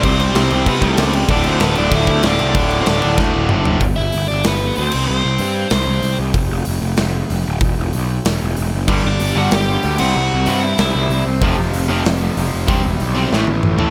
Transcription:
<<
  \new Staff \with { instrumentName = "Overdriven electric guitar" } { \time 4/4 \key c \lydian \tempo 4 = 190 <c' c''>8 <c' c''>4. <b b'>8 <a a'>4 r8 | <d' d''>8 <c' c''>8 <b b'>8 <d' d''>8 <e' e''>4 <d' d''>8. <d' d''>16~ | <d' d''>8. <c' c''>16 <d' d''>4 r2 | r8 <e' e''>4 <d' d''>8 <b b'>4 <c' c''>4 |
<c' c''>2 <c' c''>4. r8 | r1 | r1 | r8 <d' d''>4 <fis' fis''>8 <g' g''>4. <fis' fis''>8~ |
<fis' fis''>4. <e' e''>8 <e' e''>4. r8 | r1 | r1 | }
  \new Staff \with { instrumentName = "Distorted electric guitar" } { \clef bass \time 4/4 \key c \lydian <c g c'>4 <c g c'>4. <c g c'>4 r8 | <d, a, d>4. <d, a, d>4. <d, a, d>4 | <d, a, d>4. <d, a, d>4. <d, a, d>4 | r1 |
r1 | r1 | r1 | <g, d g>2~ <g, d g>8 <g, d g>8 <g, d g>8 <c g c'>8~ |
<c g c'>2 <c g c'>8 <c g c'>4 r8 | <f, c f>2~ <f, c f>8 <f, c f>8 <f, c f>4 | <c g c'>2 <a, e a>2 | }
  \new Staff \with { instrumentName = "Distorted electric guitar" } { \clef bass \time 4/4 \key c \lydian <c g c'>4 <c g c'>8 <c g c'>8 <c g c'>4 <c g c'>8 <c g c'>8 | <d, a, d>4 <d, a, d>8 <d, a, d>8 <d, a, d>4 <d, a, d>8 <d, a, d>8 | <d, a, d>4 <d, a, d>8 <d, a, d>8 <d, a, d>4 <d, a, d>8 <d, a, d>8 | r1 |
r1 | r1 | r1 | <g, d g>8 r4 <g, d g>8 r4. <c g c'>8 |
r4 <c g c'>8 r2 r8 | <f, c f>8 r4 <f, c f>8 r2 | <c g c'>8 r4 <c g c'>8 <a, e a>8 r4 <a, e a>8 | }
  \new Staff \with { instrumentName = "Distorted electric guitar" } { \clef bass \time 4/4 \key c \lydian <c g c'>4 <c g c'>8 <c g c'>8 <c g c'>4 <c g c'>8 <c g c'>8 | <d, a, d>4 <d, a, d>8 <d, a, d>8 <d, a, d>4 <d, a, d>8 <d, a, d>8 | <d, a, d>4 <d, a, d>8 <d, a, d>8 <d, a, d>4 <d, a, d>8 <d, a, d>8 | r1 |
r1 | r1 | r1 | <g, d g>8 r4 <g, d g>8 r4. <c g c'>8 |
r4 <c g c'>8 r2 r8 | <f, c f>8 r4 <f, c f>8 r2 | <c g c'>8 r4 <c g c'>8 <a, e a>8 r4 <a, e a>8 | }
  \new Staff \with { instrumentName = "Picked electric bass" } { \clef bass \time 4/4 \key c \lydian c,4 c,8 c,8 c8 c,8 cis,4 | d,,8 d,8 d,,8 d,,8 d,,8 d,8 d,,8 c,8 | d,,4 d,,8 d,,8 d,8 d,,8 fis,,4 | g,,8 g,,8 g,,8 g,,8 g,,4 d,8 c,8 |
c,8 c,8 g,4 c,8 c,8 c,8 c,8 | f,,8 f,,8 f,,8 f,,8 f,,4 f,,8 d,,8 | e,,8 e,,8 b,,4 e,,8 e,,8 e,,8 fis,,8 | g,,8 g,,8 g,,8 g,,8 g,,4 d,8 c,8 |
c,8 c,8 g,4 c,8 c,8 c,8 c,8 | f,,8 f,,8 f,,8 f,,8 f,,4 f,,8 f,,8 | e,,8 e,,8 b,,4 a,,8 a,,8 a,,8 a,,8 | }
  \new DrumStaff \with { instrumentName = "Drums" } \drummode { \time 4/4 <cymc bd>8 cymc8 <cymc sn>8 cymc8 <cymc bd>8 <cymc bd>8 <cymc sn>8 cymc8 | <cymc bd>8 cymc8 <cymc sn>8 cymc8 <cymc bd>8 <cymc bd>8 <cymc sn>8 cymc8 | <cymc bd>8 cymc8 <cymc sn>8 cymc8 <bd sn>4 toml8 tomfh8 | <hho bd>4 hho4 <hho sn>4 hho8 cymc8 |
r4 hho4 <hho sn>4 hho4 | <hho bd>4 hho4 <hho sn>4 hho4 | <hho bd>4 hho4 <hho sn>4 hho4 | <cymc bd>4 hho4 <hho sn>4 hho8 cymc8 |
r4 hho4 <hho sn>4 hho4 | <hho bd>4 hho4 <hho sn>4 hho4 | <hho bd>4 hho4 sn8 tommh8 toml8 tomfh8 | }
>>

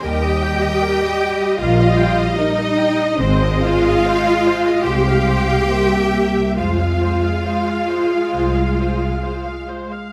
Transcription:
<<
  \new Staff \with { instrumentName = "Violin section" } { \time 4/4 \key f \minor \tempo 4 = 70 g''2 f''4 ees''4 | c''8 f''4. g''2 | f''2.~ f''8 r8 | }
  \new Staff \with { instrumentName = "Violin section" } { \time 4/4 \key f \minor ees''1~ | ees''2 f''4 e''4 | f''2.~ f''8. r16 | }
  \new Staff \with { instrumentName = "Viola section" } { \time 4/4 \key f \minor << { bes'16 ees''16 g''16 ees''16 bes'16 ees''16 g''16 ees''16 bes'16 ees''16 g''16 ees''16 bes'16 ees''16 g''16 ees''16 | c''16 ees''16 c''16 ees''16 c''16 ees''16 c''16 ees''16 c''16 f''16 c''16 f''16 c''16 e''16 g''16 e''16 | c''16 f''16 c''16 f''16 c''16 f''16 c''16 f''16 c''16 f''16 c''16 f''16 c''16 f''16 c''16 f''16 | } \\ { g1 | aes2. bes4 | aes2.~ aes8. r16 | } >> }
  \new Staff \with { instrumentName = "Cello section" } { \time 4/4 \key f \minor g'2 f'4 ees'4 | c'8 f'4. g'2 | f'2.~ f'8 r8 | }
  \new Staff \with { instrumentName = "Double bass section" } { \clef bass \time 4/4 \key f \minor ees,4 r4 bes,,4 r4 | aes,,4 r4 c,4 c,4 | f,4 r4 c,4 r4 | }
>>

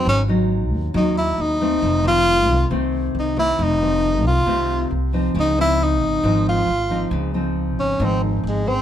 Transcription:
<<
  \new Staff \with { instrumentName = "Tenor saxophone" } { \time 4/4 \key f \phrygian \tempo 4 = 136 des'8 r4. ees'8 e'8 ees'4~ | ees'8 f'4. r4 ees'8 e'8 | ees'4. f'4. r4 | ees'8 e'8 ees'4. f'4. |
r4. des'8 c'8 ees8 aes8 c'8 | }
  \new Staff \with { instrumentName = "Nylon-string guitar" } { \time 4/4 \key f \phrygian << { <ges des' ees'>8 <ges des' ees'>4. <ges des' ees'>4. <ees a c'>8~ | <ees a c'>8 <ees a c'>4. <ees a c'>4. <ees a c'>8~ | <ees a c'>8 <ees a c'>4. <ees a c'>4 r8 <f c' ees'>8~ | <f c' ees'>8 <f c' ees'>4. <f c' ees'>4 r8 <f c' ees'>8~ |
<f c' ees'>8 <f c' ees'>4. <f c' ees'>4. <des' aes' c''>8 | } \\ { aes,2 ees2 | f,2 c2 | f,2 c2 | des2 aes,2 |
des2 aes,2 | } >> }
  \new Staff \with { instrumentName = "Upright bass" } { \clef bass \time 4/4 \key f \phrygian aes,,4. ees,8 ees,4 ees,4 | f,,4. c,8 c,4 c,4 | f,,4. c,8 c,4 c,4 | des,4. aes,,8 aes,,4 aes,,4 |
des,4. aes,,8 aes,,4 aes,,4 | }
>>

